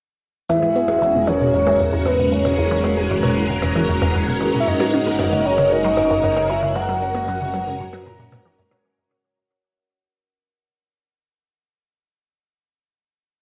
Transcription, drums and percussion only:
0.50 percussion blips soft
0.50 shaker medium
0.62 shaker soft
0.75 shaker medium
0.88 percussion blips soft
0.88 shaker soft
1.01 shaker medium
1.14 shaker soft
1.27 percussion blips soft
1.27 shaker medium
1.40 shaker soft
1.53 shaker medium
1.67 percussion blips soft
1.80 shaker medium
1.93 shaker soft
2.06 percussion blips soft
2.06 shaker medium
2.32 shaker medium
2.45 percussion blips soft
2.45 shaker soft
2.58 shaker medium
2.71 shaker soft
2.84 percussion blips soft
2.84 shaker medium
2.97 shaker soft
3.10 shaker medium
3.23 percussion blips soft
3.23 shaker soft
3.36 shaker medium
3.49 shaker soft
3.62 percussion blips soft
3.62 shaker medium
3.88 shaker medium
4.02 percussion blips soft
4.02 shaker soft
4.15 shaker medium
4.41 percussion blips soft
4.41 shaker medium
4.54 shaker soft
4.67 shaker medium
4.80 percussion blips soft
4.80 shaker soft
4.93 shaker medium
5.06 shaker soft
5.19 percussion blips soft
5.19 shaker medium
5.32 shaker soft
5.45 shaker medium
5.58 percussion blips soft
5.58 shaker medium
5.71 shaker medium
5.97 percussion blips soft
5.97 shaker medium
6.10 shaker soft
6.23 shaker medium
6.37 percussion blips soft
6.49 shaker medium
6.62 shaker soft
6.76 percussion blips soft
6.76 shaker medium
6.89 shaker soft
7.01 shaker medium
7.15 percussion blips soft
7.15 shaker soft
7.27 shaker medium
7.41 shaker soft
7.54 percussion blips soft
7.54 shaker medium
7.67 shaker medium
7.80 shaker medium
7.93 percussion blips soft
8.06 shaker medium
8.19 shaker medium
8.32 percussion blips soft
8.32 shaker medium
8.58 shaker medium
8.71 percussion blips soft
8.71 shaker medium

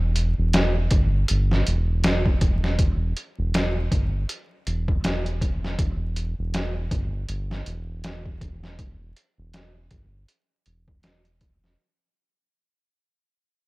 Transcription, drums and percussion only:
0.16 closed hi-hat medium
0.53 snare loud
0.53 closed hi-hat medium
0.91 kick medium
0.91 closed hi-hat medium
1.28 closed hi-hat medium
1.51 snare soft
1.67 closed hi-hat medium
2.04 snare loud
2.04 closed hi-hat medium
2.26 kick medium
2.41 kick medium
2.41 closed hi-hat medium
2.64 snare soft
2.79 kick loud
2.79 closed hi-hat medium
3.17 closed hi-hat medium
3.54 snare loud
3.54 closed hi-hat medium
3.92 kick medium
3.92 closed hi-hat medium
4.29 closed hi-hat medium
4.67 closed hi-hat medium
4.88 kick medium
5.04 snare loud
5.04 closed hi-hat medium
5.26 closed hi-hat soft
5.41 kick medium
5.41 closed hi-hat medium
5.64 snare soft
5.79 kick loud
5.79 closed hi-hat medium
6.16 closed hi-hat medium
6.54 snare loud
6.54 closed hi-hat medium
6.91 kick medium
6.91 closed hi-hat medium
7.29 closed hi-hat medium
7.51 snare soft
7.66 closed hi-hat medium
8.04 snare loud
8.04 closed hi-hat medium
8.26 kick medium
8.41 kick medium
8.41 closed hi-hat medium
8.64 snare soft
8.79 kick loud
8.79 closed hi-hat medium
9.17 closed hi-hat medium
9.54 snare loud
9.54 closed hi-hat medium
9.91 kick medium
9.91 closed hi-hat medium
10.28 closed hi-hat medium
10.66 closed hi-hat medium
10.88 kick medium
11.03 snare loud
11.03 closed hi-hat medium
11.25 closed hi-hat soft
11.41 kick medium
11.41 closed hi-hat medium
11.64 snare soft

